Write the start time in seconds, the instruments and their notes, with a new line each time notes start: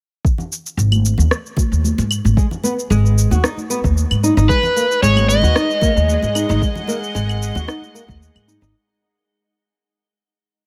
0.25 kick, shaker
0.38 low conga, shaker
0.52 shaker
0.66 shaker
0.77 upright bass G#1, shaker
0.92 high conga, claves, shaker
1.05 shaker
1.18 upright bass D#2, low conga, shaker
1.31 cross-stick, shaker
1.46 shaker
1.57 kick, muted conga, high conga, shaker
1.72 upright bass D#2, shaker
1.84 high conga, shaker
1.98 upright bass G#2, muted conga, shaker
2.11 claves, shaker
2.25 upright bass G#1, high conga, shaker
2.37 nylon-string guitar G#3, kick, shaker
2.51 low conga, shaker
2.64 nylon-string guitar B3, muted conga, shaker
2.79 shaker
2.90 upright bass G#1, nylon-string guitar G#3, shaker
3.06 shaker
3.18 shaker
3.31 upright bass D#2, nylon-string guitar F#4, muted conga, shaker
3.44 nylon-string guitar D#4, cross-stick, shaker
3.57 high conga, shaker
3.70 nylon-string guitar B3, shaker
3.84 upright bass D#2, kick, high conga, shaker
3.97 shaker
4.11 upright bass G#2, claves, shaker
4.23 nylon-string guitar D#4, high conga, shaker
4.37 upright bass G#1, nylon-string guitar D#4, shaker
4.49 synth drone G#3, nylon-string guitar G#3, electric slide guitar B4, kick, shaker
4.63 low conga, shaker
4.71 synth drone G#4
4.76 nylon-string guitar A#3, shaker
4.91 shaker
5.02 upright bass G#1, nylon-string guitar G#3, electric slide guitar C#5, synth drone D#5, shaker
5.16 high conga, claves, shaker
5.29 electric slide guitar D#5, shaker
5.42 upright bass D#2, nylon-string guitar F#4, low conga, shaker
5.49 synth drone F#5
5.56 nylon-string guitar D#4, cross-stick, shaker
5.71 shaker
5.81 nylon-string guitar A#3, kick, muted conga, high conga, shaker
5.96 upright bass D#2, shaker
6.08 high conga, shaker
6.23 upright bass G#2, muted conga, shaker
6.35 nylon-string guitar D#4, claves, shaker
6.49 upright bass G#1, nylon-string guitar D#4, high conga, shaker
6.62 nylon-string guitar G#3, kick, shaker
6.75 low conga, shaker
6.88 nylon-string guitar A#3, muted conga, shaker
7.04 shaker
7.15 upright bass G#1, nylon-string guitar G#3, shaker
7.29 claves, shaker
7.43 shaker
7.55 upright bass D#2, nylon-string guitar F#4, muted conga, low conga, shaker
7.68 nylon-string guitar D#4, cross-stick, shaker
7.82 high conga, shaker
7.94 nylon-string guitar A#3, shaker
8.08 upright bass D#2, kick, high conga, shaker
8.22 shaker
8.35 upright bass G#2, claves, shaker
8.47 nylon-string guitar D#4, high conga, shaker
8.61 upright bass G#1, nylon-string guitar D#4, muted conga, shaker